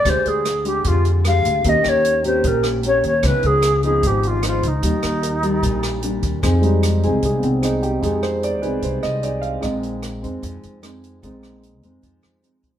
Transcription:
<<
  \new Staff \with { instrumentName = "Alto flute" } { \time 4/4 \key f \dorian \tempo 4 = 150 c''8 aes'4 g'8 f'8 r8 f''4 | ees''8 des''4 c''8 bes'8 r8 des''8 des''8 | ces''8 aes'4 aes'8 g'8 f'8 f'8 ees'8~ | ees'2.~ ees'8 r8 |
r1 | r1 | r1 | r1 | }
  \new Staff \with { instrumentName = "Grand piano" } { \time 4/4 \key f \dorian << { r1 | bes'8 g'2.~ g'8~ | g'8 r2. r8 | r4 bes'2.~ |
bes'8 r4. aes'8 <ces' c'>8 ees'8 g'8 | aes'8 c''8 d''8 ces''8 c''8 ees''8 d''8 f''8 | ees''8 r2. r8 | r1 | } \\ { r1 | r1 | r1 | r1 |
r8 <g aes ees'>8 r2. | <aes ees' g'>1 | <aes c' ees'>1 | <aes c' ees'>8 r2. r8 | } >> }
  \new Staff \with { instrumentName = "Nylon-string guitar" } { \time 4/4 \key f \dorian << { <aes d' g'>4 r8 <aes d' g'>4. <aes d' g'>4 | <bes des' g'>4. <bes des' g'>4. <bes des' g'>8 r8 | <f ces' ees'>4 r8 <f ces' ees'>4. <f ces' ees'>8 r8 | <g bes>4. <g bes>4. <g bes d'>4 |
<c' ees' aes'>4 r8 <c' ees' aes'>4. <c' ees' aes'>8 r8 | <c' ees' aes'>4. <c' ees' aes'>4. <c' ees' aes'>4 | <aes c' ees'>4 r8 <aes c' ees'>4. <aes c' ees'>4 | <aes c' ees'>4. <aes c' ees'>4. <aes c' ees'>8 r8 | } \\ { d2 d2 | ees2 bes,2 | des2 aes,2 | ees2 bes,2 |
f2 c2 | f2 c2 | bes,2 f2 | bes,2 f2 | } >> }
  \new Staff \with { instrumentName = "Upright bass" } { \clef bass \time 4/4 \key f \dorian d,16 r16 d,4. f,4. d,8 | ees,16 r16 ees,4. bes,,4. ees,8 | des,16 r16 des,4. aes,,4. des,8 | ees,16 r16 ees,4. bes,,4. ees,8 |
f,4. c,8 c,8 c,4. | f,4. c,8 c,8 c,4. | bes,,4. f,8 f,8 f,4. | bes,,4. f,8 f,8 f,4. | }
  \new DrumStaff \with { instrumentName = "Drums" } \drummode { \time 4/4 <hh bd ss>8 hh8 <hh ss>8 hh8 <hh bd>8 hh8 <hh ss>8 hh8 | <hh bd>8 <hh ss>8 hh8 hh8 <hh bd>8 <hh ss>8 hh8 hh8 | <hh bd ss>8 hh8 <hh ss>8 hh8 <hh bd>8 hh8 <hh ss>8 hh8 | <hh bd>8 <hh ss>8 hh8 hh8 <hh bd>8 <hh ss>8 hh8 <hh bd>8 |
<hh bd ss>8 hh8 <hh ss>8 hh8 <hh bd>8 hh8 <hh ss>8 hh8 | <hh bd>8 <hh ss>8 hh8 hh8 <hh bd>8 <hh ss>8 hh8 hh8 | <hh bd ss>8 hh8 <hh ss>8 hh8 <hh bd>8 hh8 <hh ss>8 hh8 | <hh bd>8 <hh ss>8 hh8 hh8 <hh bd>8 <hh ss>8 hh8 <hh bd>8 | }
>>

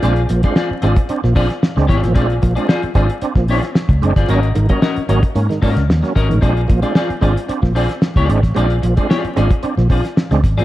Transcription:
<<
  \new Staff \with { instrumentName = "Clean electric guitar" } { \time 4/4 \key bes \mixolydian \tempo 4 = 112 <c' f' aes' d''>16 r8 <c' f' aes' d''>16 <c' f' aes' d''>16 r16 <c' f' aes' d''>16 r8. <c' f' aes' d''>16 r8. <c' f' aes' d''>8 | <c' f' aes' d''>16 r8 <c' f' aes' d''>16 <c' f' aes' d''>16 r16 <c' f' aes' d''>16 r8. <c' f' aes' d''>8 r8. <c' f' aes' d''>16 | <des' ges' bes' ees''>16 r8 <des' ges' bes' ees''>16 <des' ges' bes' ees''>16 r16 <des' ges' bes' ees''>16 r8. <des' ges' bes' ees''>8 r8 <des' ges' bes' ees''>16 r16 | <c' f' aes' d''>16 r8 <c' f' aes' d''>16 <c' f' aes' d''>16 r16 <c' f' aes' d''>16 r8. <c' f' aes' d''>16 r8 <c' f' aes' d''>8 r16 |
<c' f' aes' d''>16 r8 <c' f' aes' d''>16 <c' f' aes' d''>8 <c' f' aes' d''>16 r8. <c' f' aes' d''>16 r4 <c' f' aes' d''>16 | }
  \new Staff \with { instrumentName = "Tonewheel organ" } { \time 4/4 \key bes \mixolydian <aes c' d'>16 r16 <bes, f>16 <aes c' d'>16 r8 <aes c' d'>16 r16 <c' d'>16 <bes, f>16 <c' d'>16 r8 <aes c' d'>16 r16 <bes, f>16 | <aes c' d'>16 r16 <bes, f>16 <aes c' d'>16 r8 <aes c' d'>16 r16 <c' d'>16 <bes, f>16 <c' d'>16 r8. <aes c' d'>16 r16 | <ges bes des'>16 r16 <aes, ees>16 <ges bes des'>16 r8 <ges bes des'>16 r16 <bes des'>16 <aes, ees>16 <bes des'>16 r8 <ges bes des'>16 r16 <aes, ees>16 | <aes c' d'>16 r16 <bes, f>16 <aes c' d'>16 r8 <aes c' d'>16 r16 <c' d'>16 <bes, f>16 <c' d'>16 r8. <aes c' d'>16 r16 |
<aes c' d'>16 r16 <bes, f>16 <aes c' d'>16 r8 <aes c' d'>16 r16 <c' d'>16 <bes, f>16 <c' d'>16 r8 <aes c' d'>16 r16 <bes, f>16 | }
  \new Staff \with { instrumentName = "Fingered electric bass" } { \clef bass \time 4/4 \key bes \mixolydian bes,,8 bes,,16 r8. aes,,16 r8 bes,,8 r8 des,16 aes,,16 a,,16 | bes,,8 bes,,16 r8. aes,,16 r8 bes,,8 r8 des,16 ges,,16 g,,16 | aes,,8 aes,,16 r8. aes,,16 r16 aes,16 r16 aes,16 des,16 ees,16 r16 aes,,16 a,,16 | r8 bes,,16 r8. aes,,16 r8 bes,,8 r8 des,16 aes,,16 a,,16 |
bes,,8 bes,,16 r8. aes,,16 r8 bes,,8 r8 des,16 aes,,16 a,,16 | }
  \new DrumStaff \with { instrumentName = "Drums" } \drummode { \time 4/4 hh16 hh16 hh16 <hh bd>16 sn8 hh16 <hh bd>16 hh16 sn16 <hho bd>16 <hh sn>16 sn16 sn16 <hh bd sn>16 <hh sn>16 | <hh bd>16 hh16 <hh bd>16 hh16 sn16 hh16 <hh bd>16 hh16 hh16 <bd sn>16 hho16 <hh sn>16 sn16 <hh bd>16 hh16 <hh bd sn>16 | hh16 hh16 hh16 <hh bd>16 sn16 hh16 hh16 <hh bd>16 hh16 <hh sn>16 <hho bd>16 <hh sn>16 sn16 <hh sn>16 <hh bd sn>16 hh16 | <hh bd>16 hh16 <hh bd>16 hh16 sn16 hh16 <hh bd>16 hh16 hh16 <bd sn>16 hho16 <hh sn>16 sn16 <hh bd>16 hh16 <hh bd sn>16 |
hh16 hh16 hh16 <hh bd>16 sn16 hh16 hh16 <hh bd>16 hh16 sn16 <hho bd>16 <hh sn>16 sn16 <hh sn>16 <hh bd sn>16 hh16 | }
>>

